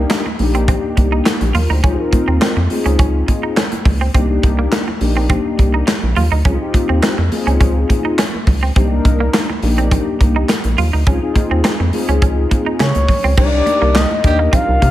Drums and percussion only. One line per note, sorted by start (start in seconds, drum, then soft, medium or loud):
0.10 snare loud
0.10 clap loud
0.10 closed hi-hat loud
0.26 high conga medium
0.39 open hi-hat medium
0.39 high conga medium
0.55 closed hi-hat medium
0.68 kick loud
0.68 closed hi-hat medium
0.68 muted conga soft
0.68 low conga medium
0.97 kick medium
0.97 closed hi-hat medium
0.97 high conga medium
1.26 snare medium
1.26 clap medium
1.26 closed hi-hat loud
1.26 muted conga soft
1.41 closed hi-hat soft
1.41 high conga medium
1.55 open hi-hat medium
1.55 muted conga soft
1.55 high conga medium
1.55 low conga medium
1.84 kick loud
1.84 closed hi-hat medium
1.84 muted conga soft
1.84 low conga medium
2.13 kick loud
2.13 closed hi-hat medium
2.13 muted conga soft
2.13 high conga medium
2.42 snare loud
2.42 clap loud
2.42 closed hi-hat loud
2.57 high conga medium
2.70 open hi-hat medium
2.70 high conga medium
2.86 closed hi-hat medium
2.99 kick loud
2.99 closed hi-hat medium
2.99 low conga medium
3.28 kick medium
3.28 closed hi-hat medium
3.28 muted conga soft
3.28 high conga medium
3.57 snare loud
3.57 clap medium
3.57 closed hi-hat loud
3.57 muted conga soft
3.72 closed hi-hat medium
3.72 high conga medium
3.85 kick medium
3.85 open hi-hat medium
3.85 muted conga soft
3.85 high conga soft
3.85 low conga medium
4.14 kick loud
4.14 closed hi-hat loud
4.14 muted conga soft
4.14 low conga medium
4.43 kick loud
4.43 closed hi-hat medium
4.43 muted conga soft
4.43 high conga medium
4.72 snare loud
4.72 clap medium
4.72 closed hi-hat loud
4.88 high conga medium
5.01 open hi-hat medium
5.01 muted conga soft
5.01 high conga medium
5.30 kick loud
5.30 closed hi-hat medium
5.30 muted conga soft
5.30 low conga medium
5.59 kick medium
5.59 closed hi-hat medium
5.59 high conga medium
5.88 snare loud
5.88 clap medium
5.88 closed hi-hat loud
6.03 high conga medium
6.16 open hi-hat medium
6.16 high conga soft
6.16 low conga medium
6.45 kick loud
6.45 closed hi-hat loud
6.45 muted conga soft
6.45 low conga medium
6.74 kick loud
6.74 closed hi-hat medium
6.74 muted conga soft
6.74 high conga medium
7.03 snare loud
7.03 clap loud
7.03 closed hi-hat medium
7.19 high conga medium
7.32 open hi-hat medium
7.32 muted conga soft
7.32 high conga medium
7.48 closed hi-hat medium
7.61 kick loud
7.61 closed hi-hat medium
7.61 muted conga soft
7.61 low conga medium
7.90 kick medium
7.90 closed hi-hat medium
7.90 high conga medium
8.18 snare loud
8.18 clap medium
8.18 closed hi-hat loud
8.18 muted conga soft
8.34 high conga medium
8.47 kick medium
8.47 open hi-hat medium
8.47 high conga medium
8.47 low conga medium
8.76 kick loud
8.76 closed hi-hat medium
8.76 muted conga soft
8.76 low conga medium
9.05 kick loud
9.05 closed hi-hat medium
9.05 high conga medium
9.34 snare loud
9.34 clap medium
9.34 closed hi-hat medium
9.50 high conga medium
9.63 open hi-hat medium
9.63 high conga medium
9.78 closed hi-hat soft
9.91 kick loud
9.91 closed hi-hat medium
9.91 muted conga soft
9.91 low conga medium
10.21 kick medium
10.21 closed hi-hat medium
10.21 muted conga soft
10.21 high conga medium
10.49 snare medium
10.49 clap medium
10.49 closed hi-hat loud
10.64 closed hi-hat medium
10.64 high conga medium
10.78 open hi-hat medium
10.78 muted conga soft
10.78 high conga medium
10.78 low conga medium
11.07 kick loud
11.07 closed hi-hat medium
11.07 low conga medium
11.36 kick loud
11.36 closed hi-hat medium
11.36 muted conga soft
11.36 high conga medium
11.64 snare loud
11.64 clap medium
11.64 closed hi-hat medium
11.80 high conga medium
11.93 open hi-hat medium
11.93 muted conga soft
11.93 high conga medium
12.09 closed hi-hat medium
12.22 kick loud
12.22 closed hi-hat medium
12.22 muted conga soft
12.22 low conga medium
12.51 kick medium
12.51 closed hi-hat medium
12.51 high conga medium
12.80 snare loud
12.80 clap medium
12.80 closed hi-hat medium
12.95 closed hi-hat medium
12.95 high conga medium
13.08 kick medium
13.08 open hi-hat medium
13.08 high conga soft
13.08 low conga medium
13.38 kick loud
13.38 crash loud
13.38 muted conga soft
13.38 low conga medium
13.66 closed hi-hat medium
13.66 muted conga soft
13.66 high conga medium
13.95 snare loud
13.95 clap loud
13.95 closed hi-hat medium
13.95 muted conga soft
14.11 high conga medium
14.24 kick loud
14.24 closed hi-hat medium
14.24 muted conga soft
14.24 high conga medium
14.53 kick loud
14.53 closed hi-hat medium
14.53 muted conga soft
14.53 low conga medium
14.82 kick medium
14.82 closed hi-hat medium
14.82 muted conga soft
14.82 high conga medium